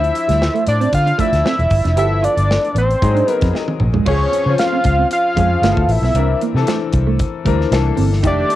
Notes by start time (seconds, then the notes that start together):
Already playing: D2 F3 D4 E4 C5 E5
0.04 closed hi-hat
0.15 muted clean electric guitar stroke, closed hi-hat
0.28 D2 G3, snare, closed hi-hat
0.42 snare
0.54 A3, closed hi-hat
0.67 A2 D5, muted clean electric guitar stroke, closed hi-hat
0.81 C4, closed hi-hat
0.93 D3 F5, kick, closed hi-hat
1.06 D4, closed hi-hat
1.18 F3 A3 D4 E4 D5 E5, kick, closed hi-hat
1.33 D2, snare, closed hi-hat
1.45 C4, snare
1.59 E1, muted clean electric guitar stroke, closed hi-hat
1.70 G1, kick, open hi-hat
1.84 F1 D4, snare, closed hi-hat
1.96 G1 F3 B3 E4 G4 A4 E5, closed hi-hat
2.10 muted clean electric guitar stroke
2.23 F4 D5, closed hi-hat
2.37 G1, closed hi-hat
2.51 snare
2.65 closed hi-hat
2.75 A1 B3 C5, closed hi-hat
2.91 closed hi-hat
3.02 G#2 F#3 C4 D#4 G#4, kick, closed hi-hat
3.15 D4, closed hi-hat
3.27 F#3 C4 D#4 A#4 B4, muted clean electric guitar stroke, closed hi-hat
3.41 F2 C4, kick, snare, closed hi-hat
3.53 C4 D#5, snare
3.68 muted clean electric guitar stroke, high tom
3.80 A#1, mid tom
3.93 G#3, floor tom
4.06 C#2 F3 C4 C#4 F4 G#4 C#5, kick, crash
4.32 C#4, closed hi-hat
4.46 C#3 F3 C4 C#4 F4, muted clean electric guitar stroke
4.58 F5, snare, closed hi-hat
4.72 C4
4.84 C#2, muted clean electric guitar stroke, kick, closed hi-hat
4.99 C4
5.11 F5, closed hi-hat
5.36 F2 F3 G#3 C4 C#4 G#4, kick, closed hi-hat
5.62 G1 F3 A3 B3 E4 G#4, snare, closed hi-hat
5.72 A4
5.77 D2, kick
5.84 A1 F5
5.89 E5, muted clean electric guitar stroke, open hi-hat
6.02 B1 B3, snare
6.14 C2 E3 C4 D4 A#4, closed hi-hat
6.30 muted clean electric guitar stroke
6.41 A#3, closed hi-hat
6.54 C3 E3 C4 D4 A4, snare
6.67 A3, snare, closed hi-hat
6.93 C2, muted clean electric guitar stroke, kick, closed hi-hat
7.07 A3
7.19 kick, closed hi-hat
7.45 D2 E3 G3 C4 D4 A#4, kick, closed hi-hat
7.61 snare
7.71 C2 E3 A#3 D4 A4, snare, closed hi-hat
7.97 G1 C4, open hi-hat
8.13 snare
8.23 F1 D#3 A3 D4 D#4 G4, kick, closed hi-hat
8.27 D5
8.49 D4, closed hi-hat